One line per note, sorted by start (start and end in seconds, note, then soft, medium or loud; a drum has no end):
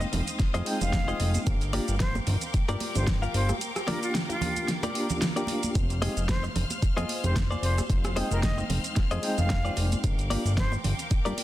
0.00 0.63 G#3 medium
0.00 0.63 C4 medium
0.00 0.64 D#4 medium
0.00 1.43 C5 medium
0.00 5.72 F5 medium
0.00 0.64 G5 medium
0.00 1.43 D#6 medium
0.00 muted clean electric guitar stroke medium
0.00 high conga medium
0.00 shaker soft
0.12 0.22 F1 loud
0.12 muted clean electric guitar stroke soft
0.12 open hi-hat medium
0.12 muted conga medium
0.12 low conga loud
0.28 closed hi-hat medium
0.28 shaker medium
0.39 kick loud
0.39 snare medium
0.39 closed hi-hat medium
0.39 shaker medium
0.54 0.62 F2 medium
0.54 0.81 F4 loud
0.54 0.81 G#4 loud
0.54 0.81 C5 loud
0.54 0.81 D#5 loud
0.54 closed hi-hat medium
0.54 muted conga soft
0.54 high conga medium
0.54 shaker soft
0.65 1.45 G#3 loud
0.65 1.45 C4 medium
0.65 1.45 D#4 medium
0.65 1.46 G5 loud
0.65 open hi-hat loud
0.81 1.13 F1 medium
0.81 1.20 F5 loud
0.81 closed hi-hat soft
0.81 muted conga medium
0.81 low conga medium
0.81 shaker medium
0.93 kick loud
0.93 snare loud
0.93 closed hi-hat medium
0.93 high conga medium
0.93 shaker medium
1.08 1.41 F4 medium
1.08 1.41 G#4 medium
1.08 1.41 C5 medium
1.08 1.41 D#5 loud
1.08 shaker soft
1.20 1.38 F1 medium
1.20 open hi-hat medium
1.20 muted conga soft
1.34 closed hi-hat soft
1.34 high conga loud
1.34 shaker medium
1.47 1.80 G1 loud
1.47 5.72 A#4 medium
1.47 5.72 G5 medium
1.47 5.72 D6 medium
1.47 kick loud
1.47 closed hi-hat medium
1.47 muted conga medium
1.47 shaker medium
1.61 closed hi-hat soft
1.61 shaker soft
1.73 1.92 A#3 medium
1.73 1.92 D4 medium
1.73 1.92 F4 medium
1.73 1.94 F4 loud
1.73 1.94 G4 medium
1.73 1.92 G4 medium
1.73 1.94 A#4 loud
1.73 1.94 D5 loud
1.73 open hi-hat loud
1.73 high conga medium
1.88 2.21 G1 medium
1.88 closed hi-hat soft
1.88 muted conga medium
1.88 shaker medium
2.00 2.15 C5 loud
2.00 kick loud
2.00 snare loud
2.00 closed hi-hat medium
2.00 shaker medium
2.15 muted clean electric guitar stroke medium
2.15 muted conga medium
2.15 high conga medium
2.15 shaker soft
2.27 2.37 G1 loud
2.27 muted clean electric guitar stroke soft
2.27 open hi-hat medium
2.27 low conga medium
2.41 closed hi-hat medium
2.41 shaker medium
2.54 2.66 G2 soft
2.54 kick loud
2.54 closed hi-hat medium
2.54 muted conga medium
2.54 shaker medium
2.68 2.76 G2 medium
2.68 2.95 F4 loud
2.68 2.95 G4 loud
2.68 2.95 A#4 loud
2.68 2.96 D5 loud
2.68 closed hi-hat medium
2.68 high conga medium
2.68 shaker soft
2.80 open hi-hat loud
2.80 muted conga medium
2.95 3.28 G1 loud
2.95 3.05 A#3 medium
2.95 3.05 D4 medium
2.95 3.05 F4 medium
2.95 3.05 G4 medium
2.95 3.08 C5 medium
2.95 closed hi-hat soft
2.95 low conga medium
2.95 shaker medium
3.07 kick loud
3.07 snare loud
3.07 closed hi-hat medium
3.07 high conga medium
3.07 shaker medium
3.22 3.55 F4 medium
3.22 3.55 G4 medium
3.22 3.55 A#4 medium
3.22 3.55 F5 medium
3.22 muted conga medium
3.22 shaker soft
3.34 3.53 G1 medium
3.34 3.50 C5 loud
3.34 open hi-hat medium
3.49 cross-stick medium
3.49 closed hi-hat soft
3.49 muted conga medium
3.49 high conga medium
3.49 shaker medium
3.61 closed hi-hat medium
3.61 shaker medium
3.76 cross-stick medium
3.76 closed hi-hat soft
3.76 shaker soft
3.87 4.91 A#3 medium
3.87 4.92 D4 medium
3.87 4.92 F4 medium
3.87 4.08 F4 loud
3.87 4.09 G4 medium
3.87 4.92 G4 loud
3.87 4.00 A#4 medium
3.87 4.09 A#4 loud
3.87 4.09 D5 loud
3.87 snare medium
3.87 open hi-hat loud
3.87 muted conga medium
3.87 high conga medium
4.03 4.15 F4 medium
4.03 closed hi-hat soft
4.03 shaker medium
4.15 snare loud
4.15 closed hi-hat medium
4.15 muted conga medium
4.15 shaker medium
4.29 4.68 F4 medium
4.29 muted clean electric guitar stroke medium
4.29 closed hi-hat soft
4.29 high conga medium
4.29 shaker soft
4.41 muted clean electric guitar stroke soft
4.41 open hi-hat medium
4.41 low conga loud
4.57 closed hi-hat medium
4.57 muted conga medium
4.57 shaker medium
4.68 snare medium
4.68 closed hi-hat medium
4.68 shaker medium
4.83 5.10 F4 medium
4.83 5.10 G4 loud
4.83 5.10 A#4 loud
4.83 5.10 D5 loud
4.83 closed hi-hat medium
4.83 muted conga medium
4.83 high conga medium
4.83 shaker soft
4.94 5.33 A#3 medium
4.94 5.33 D4 medium
4.94 5.33 F4 medium
4.94 5.33 G4 medium
4.94 open hi-hat loud
5.10 closed hi-hat soft
5.10 low conga medium
5.10 shaker medium
5.22 snare loud
5.22 closed hi-hat medium
5.22 muted conga medium
5.22 high conga medium
5.22 shaker medium
5.36 5.74 A#3 medium
5.36 5.74 D4 medium
5.36 5.74 F4 medium
5.36 5.69 F4 medium
5.36 5.69 G4 medium
5.36 5.74 G4 medium
5.36 5.69 A#4 medium
5.36 5.69 D5 loud
5.36 closed hi-hat soft
5.36 shaker soft
5.47 open hi-hat medium
5.47 muted conga medium
5.63 closed hi-hat soft
5.63 high conga medium
5.63 shaker medium
5.75 6.09 F1 loud
5.75 10.00 C5 medium
5.75 11.44 F5 medium
5.75 7.88 F6 loud
5.75 kick loud
5.75 closed hi-hat medium
5.75 muted conga medium
5.75 shaker medium
5.90 closed hi-hat soft
5.90 shaker soft
6.02 6.20 G#3 medium
6.02 6.20 C4 medium
6.02 6.20 D#4 medium
6.02 6.23 F4 loud
6.02 6.21 G4 medium
6.02 6.23 G#4 loud
6.02 6.23 C5 loud
6.02 6.23 D#5 loud
6.02 open hi-hat loud
6.02 muted conga medium
6.02 high conga loud
6.17 6.49 F1 medium
6.17 closed hi-hat soft
6.17 shaker medium
6.29 6.44 C5 medium
6.29 kick loud
6.29 snare loud
6.29 closed hi-hat medium
6.29 shaker medium
6.43 muted clean electric guitar stroke loud
6.43 muted conga medium
6.43 high conga medium
6.43 shaker soft
6.55 6.65 F1 loud
6.55 muted clean electric guitar stroke soft
6.55 open hi-hat medium
6.55 low conga medium
6.70 closed hi-hat medium
6.70 muted conga medium
6.70 shaker medium
6.82 6.94 F2 soft
6.82 kick loud
6.82 closed hi-hat medium
6.82 shaker medium
6.97 7.05 F2 medium
6.97 7.24 F4 loud
6.97 7.24 G#4 loud
6.97 7.24 C5 loud
6.97 7.24 D#5 loud
6.97 closed hi-hat medium
6.97 high conga medium
6.97 shaker soft
7.09 open hi-hat loud
7.09 muted conga medium
7.23 7.56 F1 medium
7.23 7.33 G#3 medium
7.23 7.33 C4 medium
7.23 7.34 D#4 medium
7.23 7.34 G4 medium
7.23 7.36 C5 medium
7.23 closed hi-hat soft
7.23 low conga medium
7.23 shaker medium
7.36 kick loud
7.36 snare loud
7.36 closed hi-hat medium
7.36 muted conga medium
7.36 high conga medium
7.36 shaker medium
7.50 7.84 F4 medium
7.50 7.84 G#4 medium
7.50 7.84 C5 medium
7.50 7.84 D5 loud
7.50 shaker soft
7.62 7.81 F1 medium
7.62 7.78 C5 loud
7.62 open hi-hat medium
7.78 cross-stick medium
7.78 closed hi-hat soft
7.78 muted conga medium
7.78 high conga loud
7.78 shaker medium
7.89 8.23 F1 loud
7.89 10.02 F6 medium
7.89 kick loud
7.89 closed hi-hat medium
7.89 shaker medium
8.04 cross-stick medium
8.04 closed hi-hat soft
8.04 muted conga medium
8.04 shaker soft
8.15 9.20 G#3 medium
8.15 9.20 C4 medium
8.15 9.21 D#4 medium
8.15 8.37 F4 loud
8.15 8.37 G#4 medium
8.15 8.37 C5 loud
8.15 8.37 D#5 loud
8.15 9.21 G5 loud
8.15 open hi-hat loud
8.15 high conga loud
8.31 8.63 F1 medium
8.31 8.41 A#4 medium
8.31 closed hi-hat soft
8.31 shaker medium
8.43 8.58 D#5 loud
8.43 kick loud
8.43 snare loud
8.43 closed hi-hat medium
8.43 muted conga medium
8.43 shaker medium
8.58 muted clean electric guitar stroke loud
8.58 high conga medium
8.58 shaker soft
8.70 8.79 F1 loud
8.70 muted clean electric guitar stroke soft
8.70 open hi-hat medium
8.70 muted conga medium
8.70 low conga medium
8.84 closed hi-hat medium
8.84 shaker medium
8.96 kick loud
8.96 snare medium
8.96 closed hi-hat medium
8.96 shaker medium
9.11 9.19 F2 medium
9.11 9.38 F4 loud
9.11 9.38 G#4 loud
9.11 9.38 C5 loud
9.11 9.38 D#5 loud
9.11 closed hi-hat medium
9.11 muted conga medium
9.11 high conga medium
9.11 shaker soft
9.22 10.02 G#3 medium
9.22 10.02 C4 medium
9.22 10.02 D#4 medium
9.22 10.03 G5 loud
9.22 open hi-hat loud
9.38 9.70 F1 medium
9.38 9.77 F5 loud
9.38 closed hi-hat soft
9.38 muted conga medium
9.38 low conga medium
9.38 shaker medium
9.49 kick loud
9.49 snare loud
9.49 closed hi-hat medium
9.49 high conga medium
9.49 shaker medium
9.65 9.98 F4 medium
9.65 9.98 G#4 medium
9.65 9.98 C5 medium
9.65 9.98 D5 medium
9.65 shaker soft
9.76 9.96 F1 medium
9.76 open hi-hat medium
9.76 muted conga medium
9.92 closed hi-hat soft
9.92 high conga loud
9.92 shaker medium
10.04 10.37 G1 loud
10.04 11.44 A#4 medium
10.04 11.44 G5 medium
10.04 11.44 D6 loud
10.04 kick loud
10.04 closed hi-hat medium
10.04 muted conga medium
10.04 shaker medium
10.19 closed hi-hat soft
10.19 shaker soft
10.30 10.49 A#3 medium
10.30 10.49 D4 medium
10.30 10.49 F4 medium
10.30 10.51 F4 medium
10.30 10.51 G4 loud
10.30 10.49 G4 medium
10.30 10.51 A#4 loud
10.30 10.51 D5 loud
10.30 open hi-hat loud
10.30 high conga loud
10.45 10.77 G1 medium
10.45 closed hi-hat soft
10.45 muted conga medium
10.45 shaker medium
10.57 10.72 C5 loud
10.57 kick loud
10.57 snare loud
10.57 closed hi-hat medium
10.57 shaker medium
10.71 muted clean electric guitar stroke medium
10.71 muted conga medium
10.71 high conga medium
10.71 shaker soft
10.84 10.94 G1 loud
10.84 muted clean electric guitar stroke soft
10.84 open hi-hat medium
10.84 low conga medium
10.99 closed hi-hat soft
10.99 shaker medium
11.10 11.23 G2 soft
11.10 kick loud
11.10 closed hi-hat medium
11.10 muted conga medium
11.10 shaker medium
11.25 11.33 G2 medium
11.25 11.44 F4 medium
11.25 11.44 G4 loud
11.25 11.44 A#4 loud
11.25 11.44 D5 loud
11.25 closed hi-hat soft
11.25 high conga medium
11.25 shaker soft
11.38 open hi-hat loud
11.38 muted conga medium